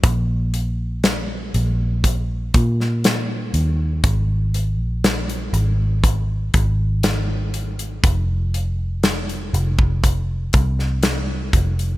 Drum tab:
HH |x-x-x-x-x-x-x-x-|x-x-xxx-x-x-x-xx|x-x-xxx-x-x-x-xx|
SD |----o------oo---|----o-------o---|----o------oo---|
BD |o-------o-o-----|o-------o-o-----|o------oo-o---o-|